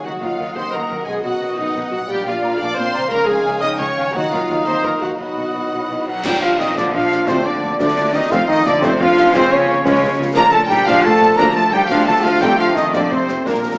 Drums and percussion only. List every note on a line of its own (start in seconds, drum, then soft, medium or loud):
6.24 concert bass drum medium
6.24 crash medium
6.25 concert bass drum medium
6.25 snare medium
6.25 crash medium
6.60 snare soft
6.78 concert bass drum medium
6.78 snare medium
7.12 snare medium
7.28 concert bass drum medium
7.28 snare medium
7.80 concert bass drum medium
7.80 snare medium
8.32 concert bass drum medium
8.32 snare medium
8.66 snare medium
8.83 concert bass drum medium
8.83 snare medium
9.17 snare medium
9.34 concert bass drum medium
9.34 snare medium
9.86 concert bass drum medium
9.86 snare medium
10.36 concert bass drum medium
10.36 snare medium
10.36 crash soft
10.70 snare medium
10.88 concert bass drum medium
10.88 snare medium
11.22 snare medium
11.39 concert bass drum medium
11.39 snare medium
11.90 concert bass drum medium
11.90 snare medium
12.42 concert bass drum medium
12.42 snare medium
12.76 snare medium
12.94 concert bass drum medium
12.94 snare medium
13.28 snare medium
13.46 concert bass drum medium
13.46 snare medium